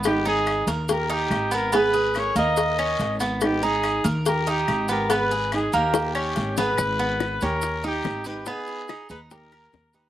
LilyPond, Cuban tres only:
\new Staff \with { instrumentName = "Cuban tres" } { \time 4/4 \key gis \minor \tempo 4 = 142 b8 dis'4 ais'4 dis'4 b8 | b8 gis'4 ais4 cis'4 b8~ | b8 dis'4 ais'4 dis'4 b8 | b8 gis'4 ais4 cis'4 b8 |
r8 b4 cis'4 dis'4 b'8 | b4 dis'8 dis'4 ais'4 dis'8 | }